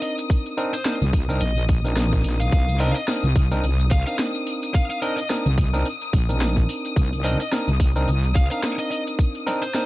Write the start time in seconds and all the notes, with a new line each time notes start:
Already playing: C4 D4 D#4 A#4 D#6
0.02 D#5, open hi-hat
0.18 open hi-hat, maracas
0.30 kick, open hi-hat, maracas
0.46 open hi-hat, maracas
0.57 C4 D4 D#4 A#4, open hi-hat
0.73 C5, open hi-hat, maracas
0.85 C4 D4 D#4 A#4, snare, open hi-hat, maracas
1.01 C2, open hi-hat, maracas
1.13 kick, open hi-hat
1.29 C4 D4 D#4 A#4, open hi-hat, maracas
1.41 A#1 D#5, open hi-hat, maracas
1.57 open hi-hat, maracas
1.69 kick, open hi-hat
1.84 C4 D4 D#4 A#4, open hi-hat, maracas
1.97 snare, open hi-hat, maracas
2.13 kick, snare, open hi-hat, maracas
2.21 A#1, snare, open hi-hat
2.30 snare
2.40 F5, open hi-hat, maracas
2.52 C2, kick, open hi-hat, maracas
2.68 open hi-hat, maracas
2.80 C4 D4 D#4 A#4 D#5, open hi-hat
2.95 D#5, open hi-hat, maracas
3.08 C4 D4 D#4 A#4, snare, maracas
3.16 open hi-hat
3.23 C2, open hi-hat, maracas
3.36 kick, open hi-hat
3.51 C4 D4 D#4 A#4, open hi-hat, maracas
3.63 C2, open hi-hat, maracas
3.79 open hi-hat, maracas
3.91 F5, kick, open hi-hat
4.07 C4 D4 D#4 A#4 F5, open hi-hat, maracas
4.19 snare, open hi-hat, maracas
4.35 open hi-hat, maracas
4.47 open hi-hat
4.63 open hi-hat, maracas
4.74 F5, kick, open hi-hat, maracas
4.90 F5, open hi-hat, maracas
5.02 C4 D4 D#4 A#4 D#5, open hi-hat
5.18 D#5, open hi-hat, maracas
5.29 C4 D4 D#4 A#4, snare, open hi-hat, maracas
5.46 C2, open hi-hat, maracas
5.58 kick, open hi-hat
5.74 C4 D4 D#4 A#4, open hi-hat, maracas
5.85 open hi-hat, maracas
6.01 open hi-hat, maracas
6.13 A#1, kick, open hi-hat
6.29 C4 D4 D#4 A#4, open hi-hat, maracas
6.41 snare, open hi-hat, maracas
6.57 kick, open hi-hat, maracas
6.69 open hi-hat
6.85 open hi-hat, maracas
6.96 C2, kick, open hi-hat, maracas
7.13 open hi-hat, maracas
7.24 C4 D4 D#4 A#4 D#5, open hi-hat
7.40 D#5, open hi-hat, maracas
7.52 C4 D4 D#4 A#4, snare, open hi-hat, maracas
7.67 C2, open hi-hat, maracas
7.80 kick, open hi-hat
7.96 C4 D4 D#4 A#4, open hi-hat, maracas
8.08 C2, open hi-hat, maracas
8.23 open hi-hat, maracas
8.35 F5, kick, open hi-hat
8.51 C4 D4 D#4 A#4 F5, open hi-hat, maracas
8.62 snare, open hi-hat, maracas
8.79 D#5, open hi-hat, maracas
8.82 open hi-hat
8.87 D#5, open hi-hat
8.92 open hi-hat
9.01 open hi-hat
9.07 open hi-hat, maracas
9.19 kick, open hi-hat, maracas
9.34 open hi-hat, maracas
9.46 C4 D4 D#4 A#4, snare, open hi-hat
9.62 C5, open hi-hat, maracas
9.74 C4 D4 D#4 A#4, snare, open hi-hat, maracas